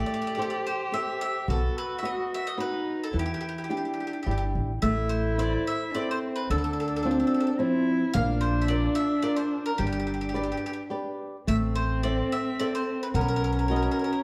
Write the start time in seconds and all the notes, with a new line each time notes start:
Already playing: A3 G4
0.06 D5
0.14 D5
0.22 D5
0.27 D5
0.35 G4 A4 D5
0.39 C5 D5
0.50 D5
0.67 C5
0.92 G4 A4 C5 E5
1.21 E5
1.48 B1 B3 F#4 A4
1.78 B4
1.99 E5
2.03 F#4 B4 D#5
2.34 E5
2.47 D#5
2.57 D#4 F#4 B4 D#5
3.04 A4
3.13 E2 E3 E4
3.19 G4
3.26 G4
3.34 G4
3.41 G4
3.49 G4
3.58 G4
3.64 G4
3.69 D4 E4 G4
3.77 G4
3.85 G4
3.94 G4
4.00 G4
4.07 G4
4.13 G4
4.23 D4 G4
4.27 G1 E4
4.31 G4
4.38 G4
4.55 A1
4.82 A1 A3 E4 E5
5.09 C5
5.38 E4 A4 C5 D5
5.67 E5
5.94 C4 E4 A4 C5 D5
6.11 C5
6.36 B4
6.50 D2 D3 D4 A4
6.58 A4
6.64 A4
6.73 A4
6.80 A4
6.88 A4
6.96 A4
7.03 C4 D4 F4 A4
7.11 A4
7.20 A4
7.27 A4
7.34 A4
7.40 A4
7.47 A4
7.59 F3 C4 D4 E4
8.14 A#1 A#3 D4 F5
8.41 C5
8.62 E5
8.68 F4 A#4 D5
8.95 E5
9.22 F4 A#4 D5
9.36 C5
9.66 A#4
9.78 G1 G3 D4 G4
9.87 G4
9.93 G4
10.00 G4
10.07 G4
10.14 G4
10.21 G4
10.29 G4
10.34 G4 B4 D5
10.43 G4
10.52 G4
10.57 G4
10.66 G4
10.73 G4
10.90 G4 B4 D5
11.47 A1 A3 C4 E5
11.75 C5
12.03 A4 C5 D5 E5
12.32 E5
12.60 A4 C5 D5 E5
12.75 C5
13.03 B4
13.14 B1 B3 C#4 A#4
13.21 A#4
13.28 A#4
13.36 A#4
13.44 A#4
13.53 A#4
13.59 A#4
13.68 F#4 A#4 B4 D#5
13.76 A#4
13.82 A#4
13.91 A#4
13.99 A#4
14.04 A#4
14.13 A#4